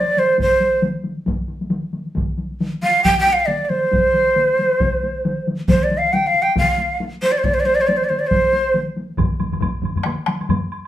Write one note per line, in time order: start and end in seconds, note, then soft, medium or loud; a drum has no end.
0.00 0.20 D5 medium
0.08 taiko high soft
0.17 0.40 C5 medium
0.17 taiko high soft
0.30 taiko high soft
0.38 0.82 C5 medium
0.38 taiko medium
0.38 taiko high medium
0.52 taiko high soft
0.60 taiko high soft
0.73 taiko high soft
0.82 taiko high soft
0.95 taiko high soft
1.04 taiko high soft
1.17 taiko high soft
1.26 taiko medium
1.26 taiko high medium
1.39 taiko high soft
1.48 taiko high soft
1.61 taiko high soft
1.70 taiko high medium
1.83 taiko high soft
1.93 taiko high soft
2.06 taiko high soft
2.15 taiko medium
2.15 taiko high soft
2.29 taiko high soft
2.38 taiko high soft
2.51 taiko high soft
2.60 taiko high soft
2.73 taiko high soft
2.83 3.03 F5 medium
2.83 taiko high soft
3.04 3.18 G5 medium
3.04 taiko medium
3.04 taiko high medium
3.18 3.35 G5 medium
3.18 taiko high soft
3.26 taiko high soft
3.33 3.40 F5 medium
3.40 3.48 F5 medium
3.46 3.65 D5 medium
3.46 taiko high medium
3.61 3.71 D5 soft
3.61 taiko high soft
3.69 5.46 C5 medium
3.69 taiko high soft
3.84 taiko high soft
3.92 taiko medium
3.92 taiko high soft
4.05 taiko high soft
4.14 taiko high soft
4.28 taiko high soft
4.36 taiko high medium
4.50 taiko high soft
4.59 taiko high soft
4.72 taiko high soft
4.80 taiko medium
4.80 taiko high medium
4.95 taiko high soft
5.03 taiko high soft
5.25 taiko high medium
5.38 taiko high soft
5.47 taiko high soft
5.60 taiko high soft
5.68 5.85 C5 medium
5.68 taiko loud
5.68 taiko high medium
5.84 5.99 D5 medium
5.91 taiko high soft
5.98 6.15 F5 medium
6.04 taiko high soft
6.13 6.28 G5 medium
6.13 taiko high medium
6.26 6.44 F5 medium
6.26 taiko high soft
6.34 taiko high soft
6.42 6.57 G5 medium
6.48 taiko high soft
6.56 6.98 F5 medium
6.56 taiko medium
6.56 taiko high medium
6.69 taiko high soft
6.78 taiko high soft
7.00 taiko high medium
7.14 taiko high soft
7.22 7.33 C5 medium
7.22 taiko high soft
7.32 7.40 D5 medium
7.38 7.46 C5 medium
7.44 7.56 D5 medium
7.44 taiko medium
7.44 taiko high medium
7.54 7.61 C5 medium
7.54 taiko high soft
7.60 7.67 D5 medium
7.66 7.76 C5 medium
7.66 taiko high soft
7.75 7.83 D5 medium
7.79 7.89 C5 medium
7.79 taiko high soft
7.87 7.98 D5 medium
7.87 taiko high medium
7.97 8.06 C5 medium
8.02 8.11 D5 medium
8.02 taiko high soft
8.09 8.21 C5 medium
8.09 taiko high soft
8.19 8.28 D5 medium
8.19 taiko high soft
8.27 8.75 C5 medium
8.27 taiko high medium
8.31 taiko medium
8.44 taiko high soft
8.53 taiko high soft
8.75 taiko high medium
8.87 taiko high soft
8.97 taiko high soft
9.10 taiko high soft
9.18 taiko medium
9.18 taiko low-mid medium
9.18 taiko high medium
9.18 high woodblock soft
9.40 taiko low-mid medium
9.40 taiko high soft
9.40 high woodblock soft
9.53 taiko low-mid medium
9.53 taiko high soft
9.53 high woodblock soft
9.61 taiko medium
9.61 taiko low-mid medium
9.61 taiko high medium
9.61 high woodblock soft
9.83 taiko low-mid medium
9.83 taiko high soft
9.83 high woodblock soft
9.96 taiko low-mid medium
9.96 taiko high soft
9.96 high woodblock soft
10.04 taiko rim medium
10.04 taiko high medium
10.04 high woodblock soft
10.26 taiko rim medium
10.26 taiko high soft
10.26 high woodblock soft
10.41 taiko high soft
10.41 high woodblock soft
10.49 taiko low-mid medium
10.49 taiko high medium
10.49 high woodblock soft
10.72 high woodblock soft